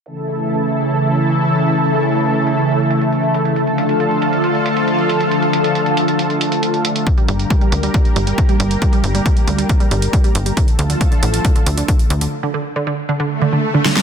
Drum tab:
HH |xxxxxxxxxxxxxxxx|xxxxxxxxxxxxxxxx|xxxxxxxxxxxxxxxx|xxxxxxxxxxxxxxxx|
SD |----------------|----------------|----------------|----------------|
BD |----------------|----------------|----------------|----------------|

HH |xxxxxxxxxxxxxxxx|xxxxxxxxxxxxxxxx|xxxxxxxxxxxxxxxx|----------------|
SD |----------------|----------------|----------------|--------------oo|
BD |o---o---o---o---|o---o---o---o---|o---o---o---o---|----------------|